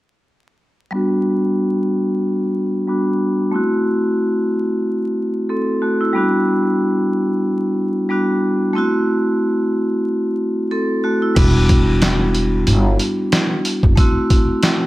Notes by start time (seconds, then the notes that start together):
0.91 G3 B3 D4
0.95 F#4
2.87 G3 B3 D4 F#4
3.51 A3 C4 E4
3.56 F#4
5.49 C4 A4
5.82 A3 F#4
6.01 E4
6.13 G3 B3 D4
6.18 F#4
8.09 G3 B3 D4 F#4
8.73 A3 C4 E4
8.78 F#4
10.71 C4 A4
11.04 A3 F#4
11.22 E4
11.35 E1 G3 B3 D4, kick, closed hi-hat, crash
11.40 F#4
11.69 kick, closed hi-hat
12.02 snare, closed hi-hat
12.35 closed hi-hat
12.67 G1, closed hi-hat
13.00 closed hi-hat
13.32 snare, closed hi-hat
13.65 closed hi-hat
13.83 F#1, kick
13.96 A3 C4 E4, kick, closed hi-hat
14.00 F#4
14.30 kick, closed hi-hat
14.63 snare, closed hi-hat